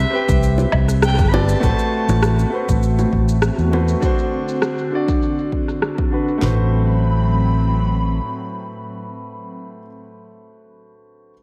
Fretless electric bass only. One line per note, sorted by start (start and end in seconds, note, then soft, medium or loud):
0.29 0.64 C2 medium
0.73 1.20 C2 loud
1.19 1.54 G1 medium
1.63 1.72 A1 loud
2.08 2.44 A1 medium
2.69 3.04 A1 medium
3.13 3.48 A1 loud
3.58 3.93 E2 medium
6.42 8.18 A1 medium